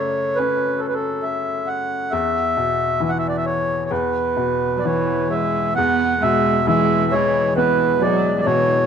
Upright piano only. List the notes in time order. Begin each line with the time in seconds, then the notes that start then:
Already playing: F#2 C#3 A3
0.39 C#4
2.12 E2
2.57 B2
3.00 E3
3.91 E2
4.37 B2
4.84 E3
5.78 E2
6.23 B2
6.67 E3
7.13 G#3
7.57 B3
8.02 G#3
8.46 B2